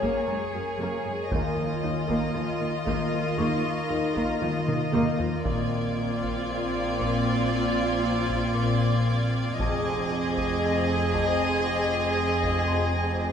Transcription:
0.00 0.10 F#2 medium
0.00 0.26 A#3 medium
0.00 1.27 G#4 soft
0.00 1.30 A#4 soft
0.00 1.27 C#5 soft
0.00 1.31 C#5 soft
0.00 1.27 G#5 soft
0.00 taiko medium
0.28 0.36 F#1 soft
0.28 0.59 F#2 medium
0.28 0.36 F#2 soft
0.28 0.36 G#3 soft
0.54 0.62 F#2 soft
0.54 0.62 F#3 soft
0.79 0.87 F#1 medium
0.79 0.88 F#2 medium
0.79 1.11 F#2 soft
0.79 1.04 A#3 medium
1.06 1.14 F#2 soft
1.06 1.14 G#3 soft
1.31 1.39 D#2 medium
1.31 1.63 D#3 medium
1.31 1.56 A#3 medium
1.31 5.44 F4 medium
1.31 5.41 A#4 medium
1.31 5.45 D#5 medium
1.31 5.43 F5 medium
1.31 4.38 G#5 soft
1.31 taiko medium
1.57 1.65 D#2 soft
1.57 1.66 F3 soft
1.83 1.91 D#2 soft
1.83 1.91 D#3 soft
1.83 2.14 D#3 soft
2.08 2.16 D#2 medium
2.08 2.33 A#3 medium
2.08 taiko medium
2.35 2.43 D#2 soft
2.35 2.66 D#3 soft
2.35 2.43 F3 soft
2.60 2.68 D#2 soft
2.60 2.69 D#3 soft
2.86 2.94 D#2 medium
2.86 3.18 D#3 medium
2.86 3.11 A#3 medium
2.86 taiko medium
3.12 3.20 D#2 soft
3.12 3.20 F3 soft
3.38 3.46 D#2 medium
3.38 3.62 A#3 medium
3.38 3.69 D#4 medium
3.38 6.44 C#6 soft
3.89 3.98 D#2 medium
3.89 3.98 D#2 soft
3.89 3.98 D#3 medium
3.89 4.21 D#4 medium
4.16 4.24 D#2 medium
4.16 4.40 A#3 medium
4.16 taiko medium
4.41 4.50 D#2 medium
4.41 4.73 D#3 medium
4.41 4.49 F3 medium
4.41 taiko high medium
4.67 4.75 D#2 soft
4.67 4.76 D#3 medium
4.67 taiko mid medium
4.93 5.01 D#2 medium
4.93 5.24 D#3 soft
4.93 5.17 A#3 medium
4.93 taiko mid medium
5.19 5.27 D#2 medium
5.19 5.27 F3 medium
5.19 taiko low medium
5.44 9.55 A#1 medium
5.44 5.76 A#2 medium
5.44 9.55 A#2 medium
5.44 9.59 C4 medium
5.44 9.55 C4 medium
5.44 9.55 F4 medium
5.44 9.58 D5 medium
5.44 9.55 D5 medium
5.44 9.54 F5 medium
5.44 13.17 D6 soft
5.44 12.13 G#6 medium
5.44 taiko medium
5.97 6.28 A#2 medium
6.23 taiko medium
6.49 6.80 A#2 medium
7.00 7.31 A#2 medium
7.00 taiko medium
7.52 7.83 A#3 medium
8.04 8.35 A#3 medium
8.30 taiko medium
8.55 8.86 A#2 medium
9.08 9.39 A#2 medium
9.58 13.32 F1 medium
9.58 13.32 F2 medium
9.58 9.91 F2 medium
9.58 13.32 C4 medium
9.58 13.32 G#4 medium
9.58 13.32 C5 medium
9.58 13.32 D#5 medium
9.58 13.32 G#5 medium
9.58 taiko medium
10.11 10.42 F2 medium
10.37 taiko medium
10.63 10.94 F2 medium
11.14 11.45 F2 medium
11.14 taiko medium
11.67 11.98 F3 medium
12.18 12.49 F3 medium
12.44 taiko medium
12.68 13.01 F2 medium
12.68 13.32 C6 soft
13.22 13.32 F2 soft

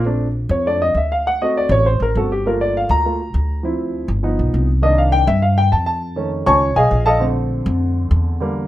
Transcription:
0.00 0.44 A#1 medium
0.05 0.25 A3 medium
0.05 0.25 C4 soft
0.05 0.26 D4 medium
0.49 0.91 F2 medium
0.49 0.65 C#5 medium
0.66 0.79 A3 soft
0.66 0.80 C4 soft
0.66 0.80 D4 medium
0.66 0.81 D5 medium
0.82 0.95 D#5 medium
0.94 1.64 D2 medium
0.94 1.11 E5 medium
1.12 1.25 F5 medium
1.27 1.41 F#5 medium
1.42 1.83 A3 medium
1.42 1.83 C4 soft
1.42 1.84 F#4 medium
1.42 1.55 D#5 medium
1.57 1.71 D5 medium
1.69 1.97 A1 loud
1.69 1.85 C#5 loud
1.86 2.00 C5 medium
2.00 2.14 A1 medium
2.00 2.16 A#4 medium
2.15 2.84 G1 medium
2.15 2.29 A3 soft
2.15 2.29 C4 soft
2.15 2.30 F#4 medium
2.15 2.30 A4 medium
2.32 2.45 G4 medium
2.45 3.04 A3 medium
2.45 3.04 A#3 soft
2.45 3.04 F4 medium
2.45 2.60 A#4 medium
2.61 2.75 D5 medium
2.77 2.90 F5 medium
2.89 3.31 D2 medium
2.89 3.61 A#5 loud
3.05 3.18 A3 soft
3.05 3.18 A#3 soft
3.05 3.19 F4 medium
3.34 4.03 D2 medium
3.63 4.06 F3 medium
3.63 4.07 C4 medium
3.63 4.07 E4 medium
4.08 4.36 G1 medium
4.23 4.66 F3 medium
4.23 4.66 B3 medium
4.23 4.66 D#4 medium
4.39 4.53 B1 medium
4.54 5.23 C2 medium
4.82 5.25 D#3 medium
4.82 5.26 A#3 medium
4.82 5.26 D4 medium
4.82 4.98 D#5 medium
4.98 5.13 F5 medium
5.12 5.27 G5 loud
5.27 5.69 G2 loud
5.27 5.42 E5 medium
5.42 5.57 F5 medium
5.58 5.72 G5 loud
5.72 6.42 F2 medium
5.72 5.85 A5 medium
5.86 6.29 A5 medium
6.16 6.59 D#3 soft
6.16 6.60 A3 medium
6.16 6.60 C#4 medium
6.46 6.75 C#2 medium
6.46 6.75 C#5 medium
6.46 6.75 G#5 medium
6.46 6.75 A5 medium
6.46 6.75 C#6 loud
6.76 6.90 B1 medium
6.76 7.05 G#4 medium
6.76 7.04 D#5 medium
6.76 7.05 F5 medium
6.76 7.05 G#5 medium
6.91 7.61 A#1 medium
7.06 7.21 A4 medium
7.06 7.21 D#5 medium
7.06 7.21 F5 medium
7.06 7.21 A5 loud
7.20 8.36 D3 medium
7.20 8.37 A3 medium
7.20 8.37 C4 medium
7.66 8.08 F2 medium
8.11 8.68 E2 medium
8.40 8.68 D3 medium
8.40 8.68 G3 medium
8.40 8.68 A#3 medium

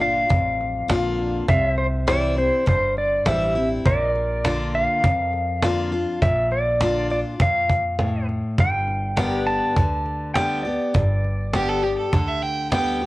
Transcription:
0.00 0.22 G1 medium
0.00 0.24 A#2 medium
0.00 0.30 D4 soft
0.00 0.29 F4 medium
0.00 1.47 D5 medium
0.00 1.47 F5 medium
0.00 1.49 F5 loud
0.00 cajon slap soft
0.29 0.81 A1 medium
0.29 1.42 F2 medium
0.29 cajon bass loud
0.61 cajon slap soft
0.88 1.40 A#1 medium
0.88 1.45 D3 medium
0.88 1.46 A#3 loud
0.88 1.46 D4 medium
0.88 1.46 F4 loud
0.88 cajon slap loud
1.19 cajon slap soft
1.49 2.49 C2 loud
1.49 2.61 C3 medium
1.49 1.75 D5 medium
1.49 1.76 E5 loud
1.49 1.70 F5 medium
1.49 cajon bass loud
1.70 3.84 E5 medium
1.75 3.84 C5 medium
1.75 1.86 C5 loud
1.75 cajon slap soft
2.07 2.36 E3 medium
2.07 2.36 G3 loud
2.07 2.37 C4 medium
2.07 2.36 E4 loud
2.07 2.38 D5 loud
2.07 cajon slap loud
2.37 2.66 C4 soft
2.37 2.66 E4 medium
2.37 2.65 C5 medium
2.37 cajon slap soft
2.66 3.17 G1 medium
2.66 3.79 G2 medium
2.66 2.97 C5 loud
2.66 cajon bass loud
2.97 3.28 D5 loud
2.97 cajon slap soft
3.25 3.76 A1 medium
3.25 3.54 E3 medium
3.25 3.54 G3 medium
3.25 3.55 C4 loud
3.25 3.54 E4 loud
3.25 3.68 E5 loud
3.25 cajon slap loud
3.55 3.85 C4 medium
3.55 3.84 E4 medium
3.55 cajon slap soft
3.85 4.85 A#1 loud
3.85 4.98 A#2 loud
3.85 8.55 A#4 medium
3.85 4.77 D5 loud
3.85 4.12 E5 medium
3.85 cajon bass loud
4.12 8.55 D5 medium
4.12 cajon slap soft
4.44 5.00 D3 loud
4.44 5.01 A#3 medium
4.44 5.01 D4 loud
4.44 5.01 F4 loud
4.44 cajon slap loud
4.74 6.22 F5 loud
4.74 cajon slap soft
5.04 6.16 F2 medium
5.04 6.03 F2 medium
5.04 cajon bass loud
5.33 cajon slap soft
5.62 5.91 D3 loud
5.62 5.91 A#3 medium
5.62 5.91 D4 loud
5.62 5.90 F4 loud
5.62 cajon slap loud
5.92 6.21 D4 medium
5.92 6.20 F4 medium
5.92 cajon slap soft
6.22 7.21 A#1 loud
6.22 7.34 A#2 loud
6.22 6.52 E5 loud
6.22 cajon bass loud
6.51 7.07 D5 loud
6.51 cajon slap soft
6.80 7.09 D3 medium
6.80 7.10 A#3 medium
6.80 7.10 D4 loud
6.80 7.09 F4 loud
6.80 cajon slap loud
7.10 7.40 D4 soft
7.10 7.39 F4 medium
7.10 7.19 D5 medium
7.10 cajon slap soft
7.40 8.40 F2 medium
7.40 7.96 A#2 medium
7.40 8.26 F5 medium
7.40 cajon bass loud
7.70 cajon bass medium
7.99 8.56 A2 medium
7.99 cajon slap loud
8.29 cajon slap soft
8.58 9.58 G1 medium
8.58 9.71 G2 medium
8.58 9.51 G5 loud
8.58 cajon bass loud
8.88 cajon slap soft
9.17 9.73 D3 medium
9.17 9.74 G3 medium
9.17 9.74 B3 medium
9.17 9.74 G4 loud
9.17 9.37 A#4 medium
9.17 13.06 D5 medium
9.17 cajon slap loud
9.37 13.06 B4 medium
9.47 10.34 A5 loud
9.47 cajon slap soft
9.76 10.76 D2 medium
9.76 10.34 D3 medium
9.76 cajon bass loud
10.06 cajon slap soft
10.34 10.64 D3 medium
10.34 10.64 G3 medium
10.34 10.65 B3 loud
10.34 10.64 G4 loud
10.34 10.66 G5 loud
10.34 cajon slap loud
10.63 10.95 B3 soft
10.63 10.94 G4 medium
10.63 12.08 D5 medium
10.63 cajon slap soft
10.94 11.95 G1 medium
10.94 12.07 G2 medium
10.94 cajon bass loud
11.25 cajon slap soft
11.53 11.82 D3 medium
11.53 11.83 G3 loud
11.53 11.83 B3 medium
11.53 11.71 G4 loud
11.53 11.81 G4 loud
11.53 cajon slap loud
11.69 11.85 A4 loud
11.83 12.13 B3 soft
11.83 12.12 G4 medium
11.83 11.97 G4 medium
11.83 cajon slap soft
11.98 12.30 A4 medium
12.13 13.06 D2 medium
12.13 12.71 D3 medium
12.13 cajon bass loud
12.28 12.44 E5 medium
12.43 12.71 G5 medium
12.43 cajon slap soft
12.71 13.01 D3 loud
12.71 13.01 G3 medium
12.71 13.01 B3 loud
12.71 13.00 G4 loud
12.71 13.06 G5 medium
12.71 cajon slap loud
13.02 13.06 G4 medium
13.02 cajon slap soft

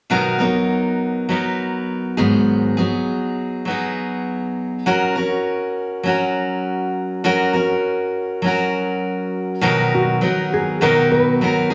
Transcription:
0.10 0.40 B2 medium
0.10 0.40 D#3 medium
0.10 0.40 F#3 medium
0.10 0.39 B3 medium
0.10 0.39 D#4 medium
0.10 0.37 A#4 medium
0.39 1.28 F#3 soft
0.39 1.30 B3 soft
0.39 1.30 D#4 soft
0.39 1.29 A#4 soft
1.29 2.18 F#3 medium
1.29 2.18 B3 soft
1.29 2.17 D#4 soft
1.29 2.17 A#4 medium
2.17 2.78 G#2 soft
2.17 2.78 D#3 soft
2.17 2.79 F#3 medium
2.17 2.78 B3 medium
2.17 2.77 D#4 medium
2.17 2.76 G#4 medium
2.77 3.65 F#3 soft
2.77 3.66 B3 soft
2.77 3.67 D#4 soft
2.77 3.67 G#4 soft
3.65 4.86 F#3 medium
3.65 4.86 B3 medium
3.69 4.87 D#4 soft
3.69 4.87 G#4 medium
4.86 5.16 F#3 medium
4.86 5.16 C#4 medium
4.86 5.16 F#4 medium
4.86 5.14 A#4 medium
5.16 6.04 C#4 soft
5.16 6.07 F#4 soft
5.16 6.09 A#4 soft
6.03 7.24 F#3 medium
6.03 7.23 C#4 medium
6.07 7.25 F#4 medium
6.07 7.25 A#4 medium
7.24 7.54 F#3 medium
7.24 7.54 C#4 medium
7.24 7.53 F#4 medium
7.24 7.52 A#4 medium
7.53 8.43 C#4 soft
7.53 8.45 F#4 soft
7.53 8.47 A#4 soft
8.42 9.62 F#3 soft
8.42 9.62 C#4 soft
8.42 9.63 F#4 medium
8.47 9.63 A#4 medium
9.61 10.21 B2 medium
9.61 10.81 D#3 medium
9.61 10.21 F#3 medium
9.61 10.22 B3 medium
9.61 10.23 D#4 medium
9.61 10.22 A#4 medium
9.95 10.53 F#4 medium
10.21 10.81 F#3 soft
10.21 10.82 B3 soft
10.21 10.82 D#4 medium
10.21 10.82 A#4 medium
10.53 10.82 G#4 medium
10.81 11.41 B2 medium
10.81 11.74 D#3 medium
10.81 11.41 F#3 medium
10.81 11.42 B3 medium
10.81 11.43 D#4 medium
10.81 11.10 A#4 medium
10.81 11.41 A#4 medium
11.12 11.74 B4 medium
11.41 11.71 F#3 soft
11.41 11.71 B3 medium
11.41 11.70 D#4 medium
11.41 11.70 A#4 medium
11.70 11.74 G#4 medium

